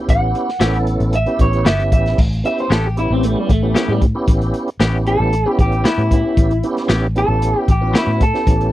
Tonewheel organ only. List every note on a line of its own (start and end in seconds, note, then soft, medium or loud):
0.00 0.50 B3 medium
0.00 0.50 C#4 medium
0.00 0.51 E4 medium
0.00 0.51 G4 medium
0.60 1.15 B3 medium
0.60 1.16 C#4 medium
0.60 1.16 E4 medium
0.60 1.16 A4 medium
1.26 1.70 B3 medium
1.26 1.70 C#4 medium
1.26 1.70 E4 medium
1.26 1.70 G4 loud
1.79 2.18 B3 medium
1.79 2.18 C#4 medium
1.79 2.18 E4 medium
1.79 2.18 G4 medium
2.44 2.88 B3 medium
2.44 2.88 C#4 medium
2.44 2.88 E4 medium
2.44 2.89 G4 medium
2.97 3.51 B3 medium
2.97 3.52 C#4 medium
2.97 3.52 E4 medium
2.97 3.52 G4 medium
3.62 4.06 B3 medium
3.62 4.06 C#4 medium
3.62 4.06 E4 medium
3.62 4.06 G4 medium
4.15 4.69 B3 medium
4.15 4.70 C#4 medium
4.15 4.70 E4 medium
4.15 4.70 G4 medium
4.79 5.35 B3 medium
4.79 5.35 C#4 medium
4.79 5.35 E4 medium
4.79 5.35 G4 medium
5.46 5.89 B3 medium
5.46 5.89 C#4 medium
5.46 5.90 E4 medium
5.46 5.90 G4 medium
5.98 6.53 B3 medium
5.98 6.53 C#4 medium
5.98 6.53 E4 medium
5.98 6.53 G4 medium
6.64 7.08 B3 medium
6.64 7.08 C#4 medium
6.64 7.08 E4 medium
6.64 7.08 G4 medium
7.15 7.70 B3 medium
7.15 7.71 C#4 medium
7.15 7.71 E4 medium
7.15 7.71 G4 medium
7.81 8.25 B3 medium
7.81 8.25 C#4 medium
7.81 8.25 E4 medium
7.81 8.25 F#4 medium
8.34 8.72 B3 medium
8.34 8.72 C#4 medium
8.34 8.72 E4 medium
8.34 8.72 G4 medium